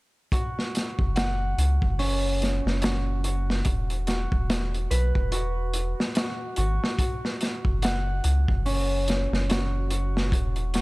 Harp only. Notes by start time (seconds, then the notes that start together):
0.32 F#4
1.16 F#5
1.99 C#4
2.82 F#4
3.24 F#4
4.07 F#4
4.90 B4
5.32 F#4
6.16 F#4
6.57 F#4
6.99 F#4
7.83 F#5
8.65 C#4
9.49 F#4
9.91 F#4
10.74 F#4